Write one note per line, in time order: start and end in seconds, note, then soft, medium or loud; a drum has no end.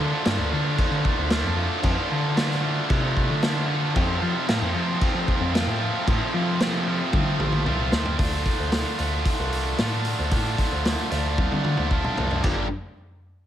0.00 0.24 D3 medium
0.00 0.11 D3 loud
0.00 0.25 A3 medium
0.00 0.26 D4 medium
0.00 0.26 F4 medium
0.24 0.38 G2 loud
0.24 1.30 D3 medium
0.24 0.53 A3 loud
0.24 0.53 D4 loud
0.24 0.51 F4 loud
0.24 snare loud
0.24 crash medium
0.39 0.50 D2 medium
0.51 0.75 D3 medium
0.51 1.31 A3 medium
0.51 1.31 D4 medium
0.51 1.32 F4 medium
0.78 kick loud
0.78 crash medium
0.91 1.03 D3 medium
1.05 kick medium
1.18 1.41 D2 medium
1.30 1.81 D3 medium
1.30 1.58 A3 medium
1.30 1.56 D4 medium
1.30 1.56 F4 medium
1.30 snare loud
1.30 crash medium
1.44 1.67 F2 medium
1.56 1.83 A3 medium
1.56 1.83 D4 medium
1.56 1.85 F4 medium
1.82 1.95 F2 loud
1.82 2.35 D3 medium
1.82 2.11 A3 loud
1.82 2.10 D4 loud
1.82 2.09 F4 loud
1.82 kick loud
1.82 crash medium
2.10 2.79 D3 medium
2.10 2.36 A3 medium
2.10 2.36 D4 medium
2.10 2.37 F4 medium
2.36 2.90 D3 medium
2.36 2.64 A3 medium
2.36 2.63 D4 loud
2.36 2.62 F4 loud
2.36 snare loud
2.36 crash medium
2.51 snare soft
2.63 3.43 A3 medium
2.63 3.43 D4 medium
2.63 3.44 F4 medium
2.90 3.30 C3 medium
2.90 kick loud
2.90 crash medium
3.17 kick medium
3.30 3.96 D3 medium
3.42 3.94 D3 medium
3.42 3.70 A3 medium
3.42 3.68 D4 medium
3.42 3.68 F4 medium
3.42 snare loud
3.42 crash medium
3.68 3.96 A3 medium
3.68 3.94 D4 medium
3.68 3.96 F4 medium
3.94 4.46 F2 medium
3.94 4.18 F2 loud
3.94 4.46 C3 medium
3.94 4.22 F3 medium
3.94 4.22 A3 loud
3.94 4.21 C4 loud
3.94 4.20 F4 loud
3.94 kick loud
3.94 crash medium
4.21 4.34 F3 loud
4.21 4.47 F3 medium
4.21 4.48 A3 medium
4.21 4.48 C4 medium
4.21 4.49 F4 medium
4.47 6.06 F2 loud
4.47 4.60 A2 loud
4.47 5.01 C3 loud
4.47 4.76 F3 loud
4.47 4.75 A3 loud
4.47 4.74 C4 loud
4.47 4.73 F4 loud
4.47 snare loud
4.47 crash medium
4.62 4.73 F2 loud
4.74 4.98 F3 medium
4.74 5.53 F3 medium
4.74 5.53 A3 medium
4.74 5.55 C4 medium
4.74 5.55 F4 medium
5.01 kick loud
5.01 crash medium
5.15 5.26 F3 medium
5.28 kick medium
5.41 5.63 F2 loud
5.53 5.82 F3 medium
5.53 5.82 A3 medium
5.53 5.81 C4 medium
5.53 5.80 F4 medium
5.53 snare loud
5.53 crash medium
5.67 5.90 A2 medium
5.80 6.07 F3 medium
5.80 6.07 A3 medium
5.80 6.08 C4 medium
5.80 6.08 F4 medium
6.07 6.59 F2 medium
6.07 6.19 A2 loud
6.07 6.60 C3 loud
6.07 6.35 F3 medium
6.07 6.34 A3 medium
6.07 6.33 C4 medium
6.07 6.32 F4 loud
6.07 kick loud
6.07 crash medium
6.34 7.01 F3 loud
6.34 6.60 F3 medium
6.34 6.61 A3 medium
6.34 6.61 C4 medium
6.34 6.61 F4 medium
6.60 7.13 F2 loud
6.60 7.14 C3 loud
6.60 6.88 F3 loud
6.60 6.87 A3 medium
6.60 6.86 C4 loud
6.60 6.86 F4 loud
6.60 snare loud
6.60 crash medium
6.87 7.64 F3 medium
6.87 7.65 A3 medium
6.87 7.66 C4 medium
6.87 7.67 F4 medium
7.13 7.40 D3 medium
7.13 kick loud
7.13 high tom medium
7.39 7.63 A1 medium
7.39 mid tom medium
7.52 mid tom medium
7.66 7.90 C2 medium
7.66 7.94 F3 medium
7.66 7.93 A3 medium
7.66 7.92 C4 medium
7.66 7.91 F4 medium
7.66 mid tom medium
7.92 8.16 D2 medium
7.92 8.18 F3 medium
7.92 8.18 A3 medium
7.92 8.18 C4 medium
7.92 8.18 F4 medium
7.92 snare loud
8.05 floor tom medium
8.18 8.42 D2 medium
8.18 9.00 D3 medium
8.18 8.99 A3 medium
8.18 8.99 D4 medium
8.18 8.98 F4 medium
8.18 kick loud
8.18 open hi-hat medium
8.45 kick medium
8.45 open hi-hat medium
8.59 8.82 D2 medium
8.72 snare loud
8.72 open hi-hat medium
8.98 9.22 D2 medium
8.98 9.76 D3 medium
8.98 9.77 A3 medium
8.98 9.78 D4 medium
8.98 9.77 F4 medium
8.98 open hi-hat medium
9.25 kick medium
9.25 open hi-hat medium
9.39 9.73 C2 medium
9.52 open hi-hat medium
9.77 10.13 A2 medium
9.77 10.29 D3 medium
9.77 10.30 A3 medium
9.77 10.32 D4 medium
9.77 10.31 F4 medium
9.77 snare loud
9.77 open hi-hat medium
10.05 open hi-hat medium
10.19 10.30 D2 medium
10.31 10.54 A2 loud
10.31 11.09 D3 medium
10.31 11.10 A3 loud
10.31 11.10 D4 medium
10.31 11.09 F4 medium
10.31 kick loud
10.31 open hi-hat medium
10.58 kick medium
10.58 open hi-hat medium
10.73 10.95 D2 medium
10.85 snare loud
10.85 open hi-hat medium
11.10 11.46 D2 loud
11.10 11.88 D3 medium
11.10 11.90 A3 medium
11.10 11.89 D4 medium
11.10 11.89 F4 medium
11.10 open hi-hat medium
11.38 kick loud
11.38 high tom medium
11.52 11.74 D3 medium
11.52 high tom medium
11.64 mid tom medium
11.77 12.01 D2 medium
11.77 mid tom medium
11.90 12.42 D3 medium
11.90 12.42 A3 medium
11.90 12.43 D4 medium
11.90 12.43 F4 medium
11.90 kick medium
12.04 mid tom medium
12.17 12.41 C2 medium
12.17 floor tom loud
12.31 floor tom medium
12.42 12.69 G1 loud
12.42 12.64 G2 medium
12.42 12.65 D3 medium
12.42 12.65 G3 loud
12.42 12.65 A#3 medium
12.42 12.65 D4 medium
12.42 12.65 G4 medium
12.42 kick medium
12.42 floor tom loud
12.42 crash medium